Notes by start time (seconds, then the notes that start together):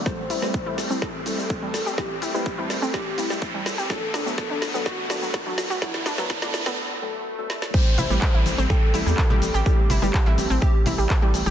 Already playing: A3, riser
0.06 G3 A3 C4 E4 A4 C5, kick, snare, shaker
0.30 A1 E4, open hi-hat, shaker
0.42 A1 G3 A3 C4 E4 B4, snare, shaker
0.54 kick, shaker
0.66 A1 G3 A3 C4 E4 A4
0.78 A1, snare, open hi-hat, shaker
0.90 A1 G3 A3 C4 E4 A4, shaker
1.02 G4 A4, kick, snare, shaker
1.26 A1 G3 A3 C4 E4 A4, open hi-hat, shaker
1.38 E2 G3, shaker
1.50 kick, shaker
1.62 G3 A3 C4 E4 A4
1.74 A1, snare, open hi-hat, shaker
1.86 A1 G4, shaker
1.98 G3 A3 C4 E4 G4 A4, kick, snare, shaker
2.22 G1 E4, open hi-hat, shaker
2.34 G1 G3 A3 C4 E4 B4, shaker
2.46 kick, shaker
2.58 A1 G3 A3 C4 E4 A4
2.70 A1, snare, open hi-hat, shaker
2.82 A1 G3 A3 C4 E4 A4, shaker
2.94 G4, kick, snare, shaker
3.18 A1 G3 A3 C4 E4 A4, open hi-hat, shaker
3.30 A1 G3, snare, shaker
3.42 kick, shaker
3.54 G3 A3 C4 E4 A4
3.66 A1, snare, open hi-hat, shaker
3.78 A1 G4, shaker
3.90 D3 F#3 A3 B3 D4 A4, kick, snare, shaker
4.14 B1 D4, snare, open hi-hat, shaker
4.26 B1 F#3 A3 B3 D4 B4, shaker
4.38 kick, snare, shaker
4.50 B1 F#3 A3 B3 D4 A4
4.62 B1, snare, open hi-hat, shaker
4.74 B1 F#3 A3 B3 D4 A4, shaker
4.86 F#4, kick, snare, shaker
5.10 B1 F#3 A3 B3 D4 A4, snare, open hi-hat, shaker
5.22 F#1 F#3, shaker
5.34 kick, snare, shaker
5.46 F#3 A3 B3 D4 A4
5.58 B1, snare, open hi-hat, shaker
5.70 B1 F#4, shaker
5.82 F#3 A3 B3 D4 E4 A4, kick, snare, shaker
5.94 snare
6.06 A1 D4, snare, open hi-hat, shaker
6.18 A1 F#3 A3 B3 D4 B4, snare, shaker
6.30 kick, snare, shaker
6.42 B1 F#3 A3 B3 D4 A4, snare
6.54 B1, snare, open hi-hat, shaker
6.66 B1 F#3 A3 B3 D4 A4, snare, shaker
6.78 swell
7.02 F#3 A3 B3 D4 A4
7.38 F#3 A3 B3 D4 A4
7.50 snare
7.62 snare
7.74 G3 A3 C4 E4 G4 A4 C5, kick, crash, downlifter, shaker
7.98 A1 E4 E5, open hi-hat, low conga, shaker
8.10 A1 G3 A3 C4 E4 G4 B4, high bongo, shaker
8.22 kick, clap, shaker
8.34 A1 G3 A3 C4 E4 A4 E5
8.46 A1, open hi-hat, high conga, shaker
8.58 A1 G3 A3 C4 E4 A4 C5, shaker
8.70 G4 A4 G5, kick, low conga, shaker
8.94 A1 G3 A3 C4 E4 A4 E5, open hi-hat, shaker
9.06 E2 G3 G4, shaker
9.18 kick, clap, shaker
9.30 G3 A3 C4 E4 G4 A4, low conga
9.42 A1, open hi-hat, shaker
9.54 A1 G4 G5, high conga, shaker
9.66 G3 A3 C4 E4 G4 A4, kick, shaker
9.90 G1 E4 E5, open hi-hat, low conga, shaker
10.02 G1 G3 A3 C4 E4 G4 B4, shaker
10.14 kick, clap, shaker
10.26 A1 G3 A3 C4 E4 A4 E5, clap
10.38 A1, open hi-hat, high conga, shaker
10.50 A1 G3 A3 C4 E4 A4 C5, shaker
10.61 G4 G5, kick, high bongo, shaker
10.86 A1 G3 A3 C4 E4 A4 E5, open hi-hat, low conga, shaker
10.98 A1 G3 G4, shaker
11.10 kick, clap, shaker
11.22 G3 A3 C4 E4 G4 A4
11.34 A1, open hi-hat, shaker
11.46 A1 G4 G5, high bongo, high conga, shaker